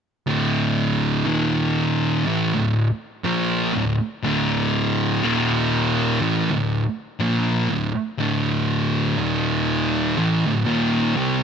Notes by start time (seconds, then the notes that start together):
0.27 D2 A2 D3
1.26 D#2 A#2 D#3
2.25 A2 E3
2.54 D2 A2
3.24 A#2 F3 A#3
3.75 D2 A2
4.23 D2 A2 D3
5.23 D#2 A#2 D#3
6.21 A2 E3
6.50 D2 A2
7.19 A#2 F3 A#3
7.69 D2 A2
8.18 D2 A2 D3
9.18 D#2 A#2 D#3
10.17 A2 E3
10.45 D2 A2
10.66 D#2 A#2 D#3
11.16 C3 G3